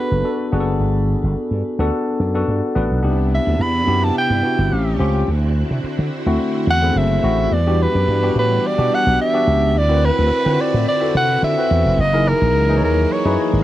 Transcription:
Already playing: tine electric piano B3 D4 F#4 G#4 A4 B4, soprano saxophone B4
0.11 slap bass F#1
0.24 tine electric piano B3 D4 F#4 A4
0.52 slap bass F#1, tine electric piano B3 D4 F#4 G#4
0.60 tine electric piano A4
0.80 slap bass G1
1.24 slap bass G1
1.36 muted slap bass stroke
1.51 slap bass G2
1.79 slap bass D2, tine electric piano B3 D4 F#4 A4
2.20 slap bass F#2
2.34 tine electric piano B3 D4 F#4 A4
2.48 slap bass G2
2.75 slap bass A1, tine electric piano B3 D4 F#4 B4
2.91 slap bass B1
3.03 slap bass C2, string machine C3 B3 D4 E4, tine electric piano B3 D4 D#4 G4
3.10 tine electric piano E4
3.34 soprano saxophone E5
3.47 slap bass D2
3.59 slap bass E2, soprano saxophone B5
3.87 slap bass F#2, tine electric piano B3 D4 E4 G4
4.04 soprano saxophone A5
4.18 soprano saxophone G5
4.30 slap bass G2
4.43 tine electric piano B3 D4 E4 F#4
4.59 slap bass G1
4.71 slap bass A1, string machine A3 C#4 G4, tine electric piano C4 C#4 F4 G4
4.99 slap bass C#2, tine electric piano C4 C#4 F4 G4
5.28 slap bass D2, string machine D3 C4 E4 F#4
5.71 slap bass C3
5.84 muted slap bass stroke
5.99 slap bass D3
6.26 slap bass D2, tine electric piano A3 C4 E4 F#4
6.67 slap bass E2, soprano saxophone F#5
6.82 tine electric piano A3 C4 E4 G#4
6.90 tine electric piano A4
6.96 slap bass F#1, soprano saxophone E5
7.23 slap bass A1, tine electric piano A3 C4 E4 F#4
7.51 slap bass E2, string machine E3 G3 D4, soprano saxophone D5
7.66 tine electric piano B3 D4 F#4 G4
7.82 soprano saxophone B4
7.95 slap bass F#2
8.08 slap bass G2
8.22 tine electric piano B3 D4 F#4 G4
8.36 slap bass A2, soprano saxophone B4
8.67 soprano saxophone D5
8.78 slap bass B2, tine electric piano B3 D4 F#4 G4
8.95 soprano saxophone F#5
9.07 slap bass B1
9.21 soprano saxophone E5
9.33 tine electric piano B3 D4 F#4 G4
9.47 slap bass C#2
9.74 slap bass D2, string machine D3 C4 E4 F#4 B4, soprano saxophone D5
9.89 tine electric piano C4 E4 F#4 A#4
9.97 tine electric piano B4
10.05 soprano saxophone B4
10.19 slap bass D2
10.31 muted slap bass stroke
10.45 slap bass D3, tine electric piano C4 E4 F4 B4
10.52 tine electric piano F#4
10.61 soprano saxophone D5
10.74 slap bass A2
10.88 soprano saxophone D5
11.01 tine electric piano C4 E4 F#4 A4
11.15 slap bass C3, soprano saxophone F#5
11.43 slap bass D3, soprano saxophone E5
11.58 tine electric piano C4 E4 F#4 B4
11.71 slap bass E2
11.86 slap bass F1
11.98 slap bass F#1, string machine E3 F#3 A#3, soprano saxophone D#5
12.13 tine electric piano D#4 E4 G#4 A#4
12.28 soprano saxophone A#4
12.42 slap bass A#1
12.54 slap bass C#2
12.69 tine electric piano D#4 E4 G#4 B4
12.77 tine electric piano C#5
12.82 slap bass D#2, soprano saxophone A#4
13.12 soprano saxophone C#5
13.25 slap bass F#2, tine electric piano D#4 E4 G#4 B4
13.33 tine electric piano C#5
13.53 slap bass G#1

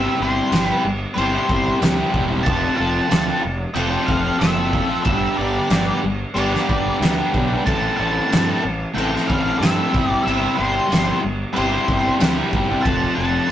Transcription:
Already playing: distorted electric guitar G3 C4 E4 G4, lead electric guitar E5
0.18 fingered electric bass G1, distorted electric guitar G3 C4 E4 G4, lead electric guitar C5
0.51 fingered electric bass G1, distorted electric guitar G3 C4 E4 G4, snare, crash
0.64 distorted electric guitar G4, lead electric guitar B4
0.69 distorted electric guitar C4 E4
0.84 fingered electric bass G1, muted distorted electric guitar stroke
1.14 fingered electric bass G1, distorted electric guitar G3 C4, lead electric guitar C5, crash
1.19 distorted electric guitar E4 G4
1.32 distorted electric guitar C4 E4 G4
1.48 fingered electric bass G1, distorted electric guitar G3 C4 E4, kick
1.52 distorted electric guitar G4
1.80 fingered electric bass D2, distorted electric guitar G3 C4 E4 G4, snare, crash
1.96 distorted electric guitar C4 E4 G4
2.11 fingered electric bass E1, distorted electric guitar G3 C4 E4, kick
2.15 distorted electric guitar G4
2.28 distorted electric guitar E4 G4
2.32 distorted electric guitar C4
2.43 fingered electric bass F1, distorted electric guitar F3 C4 F4 A4, lead electric guitar A5, kick, crash
2.75 distorted electric guitar F3 C4 F4 A4, lead electric guitar A5
2.80 fingered electric bass F1
3.08 fingered electric bass D2, distorted electric guitar F3 C4 F4 A4, snare, crash
3.26 distorted electric guitar C4 F4 A4
3.42 fingered electric bass F1, muted distorted electric guitar stroke
3.74 fingered electric bass F1, distorted electric guitar F3 C4 F4 A4, lead electric guitar G5, crash
3.90 distorted electric guitar C4 F4 A4
4.05 fingered electric bass F1, distorted electric guitar F3 C4 F4 A4, lead electric guitar F5, kick
4.39 fingered electric bass F#1, distorted electric guitar F3 C4 F4 A4, lead electric guitar E5, snare, crash
4.56 distorted electric guitar C4 F4 A4
4.72 distorted electric guitar F3 C4 F4 A4, kick
4.87 distorted electric guitar F4 A4
4.91 distorted electric guitar C4
5.03 fingered electric bass G1, distorted electric guitar G3 B3 D4, lead electric guitar E5, kick, crash
5.08 distorted electric guitar G4
5.36 fingered electric bass G1, distorted electric guitar G3 B3 D4 G4, lead electric guitar D5
5.68 fingered electric bass G1, distorted electric guitar G3 B3 D4 G4, snare, crash
5.85 distorted electric guitar B3 D4 G4
6.03 fingered electric bass G1, muted distorted electric guitar stroke
6.34 fingered electric bass G1, distorted electric guitar G3 B3 D4 G4, lead electric guitar D5, crash
6.51 distorted electric guitar D4 G4, snare
6.55 distorted electric guitar B3
6.66 fingered electric bass G1, distorted electric guitar G3 B3 D4 G4, kick
7.00 fingered electric bass D2, distorted electric guitar G3 B3 D4 G4, snare, crash
7.17 distorted electric guitar B3 D4 G4
7.33 fingered electric bass B1, distorted electric guitar G3 B3 D4 G4, kick
7.48 distorted electric guitar B3 D4 G4
7.64 fingered electric bass A1, distorted electric guitar A3 C4 E4 A4, lead electric guitar A5, kick, crash
7.97 fingered electric bass A1, distorted electric guitar A3 C4 E4 A4, lead electric guitar A5
8.30 fingered electric bass G2, distorted electric guitar A3 C4 E4 A4, snare, crash
8.47 distorted electric guitar C4 E4 A4
8.63 fingered electric bass A1, muted distorted electric guitar stroke
8.94 fingered electric bass A1, distorted electric guitar A3 C4 E4 A4, lead electric guitar G5, crash
9.11 distorted electric guitar C4 E4 A4
9.16 snare
9.27 fingered electric bass A1, distorted electric guitar A3 C4 E4 A4, lead electric guitar F5, kick
9.59 fingered electric bass G2, distorted electric guitar A3 C4 E4 A4, lead electric guitar E5, crash
9.63 snare
9.76 distorted electric guitar C4 E4 A4
9.91 fingered electric bass G1, distorted electric guitar G3 C4 E4 G4, kick
10.06 distorted electric guitar C4 E4 G4, lead electric guitar D5
10.23 distorted electric guitar G3 C4 E4 G4, lead electric guitar E5
10.27 fingered electric bass G1, crash
10.55 fingered electric bass G1, distorted electric guitar G3 C4 E4 G4, lead electric guitar C5
10.87 distorted electric guitar G3 C4 E4
10.91 fingered electric bass G1, distorted electric guitar G4, snare, crash
11.03 distorted electric guitar E4 G4
11.08 distorted electric guitar C4
11.21 fingered electric bass G1, muted distorted electric guitar stroke
11.53 fingered electric bass G1, distorted electric guitar G3 C4 E4, lead electric guitar C5, crash
11.57 distorted electric guitar G4
11.69 distorted electric guitar C4 E4 G4
11.87 fingered electric bass G1, distorted electric guitar G3 C4 E4 G4, kick
12.19 fingered electric bass D2, distorted electric guitar G3 C4 E4 G4, snare, crash
12.36 distorted electric guitar C4 E4 G4
12.52 fingered electric bass G1, distorted electric guitar G3 C4 E4 G4, kick
12.68 distorted electric guitar C4 E4 G4
12.82 fingered electric bass F1, distorted electric guitar F3 C4, lead electric guitar A5, kick, crash
12.87 distorted electric guitar F4 A4
13.15 fingered electric bass F1, distorted electric guitar F3 C4 F4, lead electric guitar A5
13.20 distorted electric guitar A4
13.47 distorted electric guitar F3

